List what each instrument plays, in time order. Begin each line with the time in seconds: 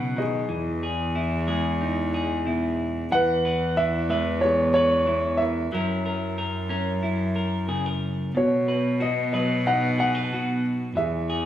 Already playing: clean electric guitar B2 C#3 F#3 D#4 F#4 B4, cello B2, grand piano D#5 F#5
0.16 clean electric guitar D#3, grand piano G#4 D#5
0.49 cello E2, clean electric guitar E3
0.83 clean electric guitar G#4
1.15 clean electric guitar E4
1.47 clean electric guitar G#3 G#4
1.81 clean electric guitar D#4
2.14 clean electric guitar G#4
2.46 clean electric guitar B2 E4
3.10 cello E2, clean electric guitar E3, grand piano F#5
3.14 grand piano B4
3.45 clean electric guitar B4
3.77 clean electric guitar E4, grand piano E5
4.09 clean electric guitar G#3 B4, grand piano E5
4.41 clean electric guitar B3, grand piano G#4 C#5
4.74 clean electric guitar B4, grand piano C#5
5.06 clean electric guitar E3 E4
5.37 grand piano E5
5.42 grand piano A#4
5.71 cello F#2, clean electric guitar F#3 C#4 E4 A#4
6.06 clean electric guitar A#4
6.38 clean electric guitar A#4
6.69 clean electric guitar C#4 A#4
7.03 clean electric guitar E4
7.36 clean electric guitar A#4
7.68 clean electric guitar C#3 G#4
7.86 clean electric guitar A#4
8.35 cello B2, clean electric guitar B2, grand piano F#4 C#5
8.68 clean electric guitar B4
9.00 clean electric guitar F#4, grand piano D#5
9.33 clean electric guitar F#3 B4, grand piano D#5
9.67 clean electric guitar D#4, grand piano D#5 F#5
9.98 clean electric guitar G#4, grand piano F#5
10.15 clean electric guitar B4
10.32 clean electric guitar B2 F#4
10.95 cello E2, clean electric guitar E3, grand piano G#4 E5
11.30 clean electric guitar G#4